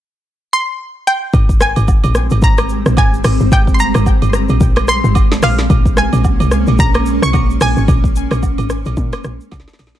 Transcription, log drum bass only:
1.34 G#1
1.77 G#1
2.04 A#1
2.31 G#1
2.42 G#1
2.86 A#1
2.97 G#1
3.25 G#1
3.40 G1
3.52 G#1
3.95 G#1
4.22 G1
4.49 A#1
4.61 A#1
5.04 G#1
5.43 A#1
5.70 A#1
6.13 A#1
6.40 C2
6.67 A#1
6.79 A#1
7.22 C2
7.34 A#1
7.61 A#1
7.77 G#1
7.88 A#1
8.31 A#1
8.59 G#1
8.86 A#1
8.97 A#2
9.24 A#1
9.52 C2
9.79 A#1

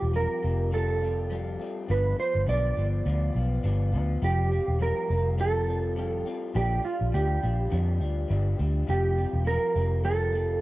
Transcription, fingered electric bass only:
0.02 E1
0.44 F1
1.90 G1
2.35 G1
2.48 B1
2.77 G1
3.06 D2
3.35 B1
3.64 G1
3.93 D2
4.22 F1
4.68 E1
5.10 F1
6.55 A#1
7.01 A#1
7.14 D2
7.43 A#1
7.72 F2
8.01 D2
8.30 G1
8.59 D2
8.88 F1
9.33 E1
9.75 F1

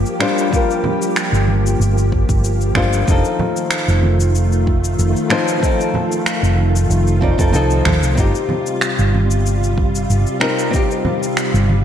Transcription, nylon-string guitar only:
Already playing: G3 D4 F4 A#4
0.20 G3 D4 F4 C5
0.50 G3 D4 F4
0.56 A#4
2.75 G3 D4 F4 C5
3.05 F3 C4 D#4
3.11 A4
5.30 F3 C4 D#4 C5
5.60 F3 C4 D#4
5.65 A4
7.21 F3 C4 D#4 D5
7.38 F3 C4 D#4 A4
7.53 F3 C4 D#4 A4
8.15 C4 D#4
8.20 G4
10.40 C4 D#4 A#4
10.71 C4 D#4
10.76 G4

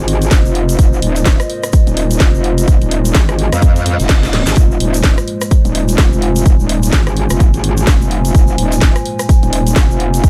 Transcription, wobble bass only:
0.00 G#1
0.32 F1
0.45 F1
0.79 F1
1.02 D#1
1.87 D#1
2.21 F1
2.34 F1
2.68 F1
2.82 D#1
3.15 G#1
3.52 F2
4.00 F1
4.47 G#1
4.57 F1
4.80 D#1
5.65 D#1
5.98 F1
6.12 F1
6.46 F1
6.60 D#1
6.93 G#1
7.30 F1
7.54 G#1
7.87 F1
8.01 F1
8.35 F1
8.58 D#1
9.43 D#1
9.76 F1
9.90 F1
10.24 F1

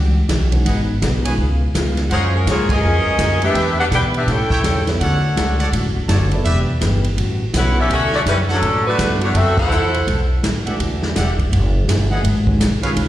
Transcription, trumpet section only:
0.66 G#4 B4 D#5 F#5
1.25 G#4 B4 C#5 G#5
2.10 G#4 A#4 F5 F#5
2.69 G#4 A#4 F5 G#5
3.54 B4 D5 E5 G5
4.50 A4 C#5 E5 G5
5.00 A4 C#5 D5 F#5
5.59 A4 C#5 D5 F#5
6.09 A4 C#5 D5 A5
6.45 G4 B4 D5 E5
7.77 A4 C#5 D5 F#5
8.49 A4 C#5 D5 F#5
9.71 A4 C5 E5 F#5
10.66 G4 D5 E5 F#5
11.16 G4 D5 E5 F#5
12.11 G#4 B4 D#5 F#5
12.83 G#4 B4 C#5 F5

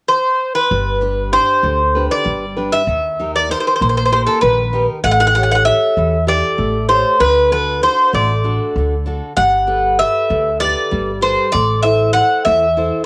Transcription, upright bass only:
0.71 G1
1.63 D2
2.26 G1
2.87 D#2
3.81 A#1
4.43 A#1
5.04 A1
5.97 E2
6.59 A1
7.20 D2
8.13 A1
8.76 D2
9.37 G1
10.30 D2
10.92 G1
11.54 A1
12.46 E2

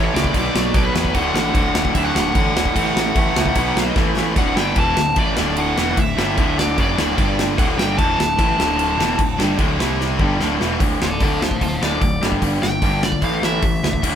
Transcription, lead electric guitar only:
0.05 C#5
0.14 D5
0.75 D5
0.85 B4
1.14 F#5
1.35 F#5
1.95 E5
2.04 F#5
2.15 F#5
4.38 F#5
4.57 G5
4.79 A5
5.19 D5
5.58 F#5
5.98 E5
6.59 D5
6.80 D5
7.59 F#5
7.78 G5
7.98 A5
8.19 A5
11.02 A4 D5
11.23 A4 D5
11.43 C5 F5
11.62 C5 F5
11.83 D5
12.63 G5
13.04 D5
13.24 F5
13.44 E5

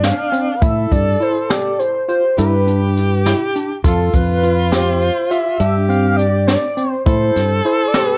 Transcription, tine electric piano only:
0.03 D4
0.32 C4
0.62 E4
1.20 E4
1.50 G4
2.09 F4
2.38 E4
2.67 D4
3.26 E4
3.56 D4
3.84 F4
4.43 F4
4.72 G4
5.31 F4
5.60 D4
5.89 C4
6.48 D4
6.77 C4
7.06 E4
7.65 E4
7.95 G4

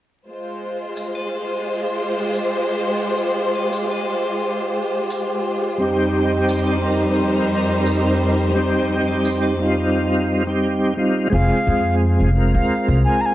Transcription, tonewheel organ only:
5.78 G3 C4 D#4
5.82 G4
6.82 G3 C4 D#4 A#4
8.55 G3 C4 D#4
8.59 G4
9.58 G3 C4 D#4 F4
10.47 G3 C4 D#4 G4
10.97 G3 C4 D#4 F4
11.30 G#3 C4 F4
11.34 G#4
12.33 G#3 C4 F4
12.37 A#4

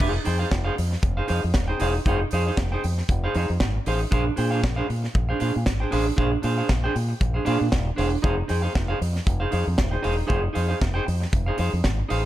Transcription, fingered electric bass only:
0.01 F1
0.27 F2
0.52 F1
0.79 F2
1.03 F1
1.30 F2
1.44 F2
1.54 D#1
1.81 E1
2.06 F1
2.33 F2
2.57 F1
2.84 F2
3.09 F1
3.35 F2
3.50 F2
3.61 G#1
3.87 A1
4.12 A#1
4.38 A#2
4.64 A#1
4.90 A#2
5.15 A#1
5.41 A#2
5.56 A#2
5.67 G#1
5.93 A1
6.18 A#1
6.44 A#2
6.70 A#1
6.96 A#2
7.21 A#1
7.47 A#2
7.61 A#2
7.73 D#1
7.99 E1
8.24 F1
8.50 F2
8.76 F1
9.01 F2
9.27 F1
9.53 F2
9.67 F2
9.79 D#1
10.05 E1
10.30 F1
10.56 F2
10.82 F1
11.08 F2
11.33 F1
11.59 F2
11.73 F2
11.85 G#1
12.11 A1

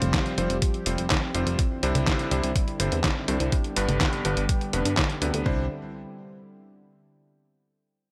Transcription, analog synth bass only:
0.02 F1
0.38 F1
0.50 F1
0.86 F1
0.98 F1
1.35 F1
1.47 F1
1.83 C2
1.95 C2
2.31 C2
2.44 C2
2.80 G1
2.92 E2
3.28 C2
3.40 C2
3.77 G1
3.89 G1
4.25 G1
4.37 G1
4.73 F1
4.85 G2
5.22 D2
5.34 D2
5.46 C2

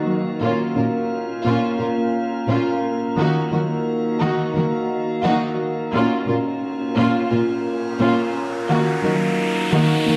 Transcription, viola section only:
Already playing: A#3 F#4
0.41 A#3 F4
0.76 A#3 F4
1.45 A#3 F4
1.79 A#3 F4
2.48 A#3 F4
3.18 A#3 F#4
3.52 A#3 F#4
4.21 A#3 F#4
4.55 A#3 F#4
5.25 A#3 F#4
5.93 A#3 F4
6.28 A#3 F4
6.96 A#3 F4
7.30 A#3 F4
8.00 A#3 F4
8.69 A#3 F#4
9.03 A#3 F#4
9.72 A#3 F#4
10.07 A#3 F#4

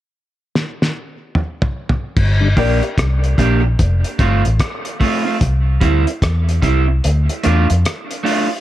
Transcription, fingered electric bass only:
2.17 G1
2.57 A#1
2.98 C2
3.39 A#1
3.80 F1
4.20 G1
4.46 A1
5.42 C2
5.82 D2
6.23 E2
6.63 C2
7.05 D2
7.46 E2
7.71 F2

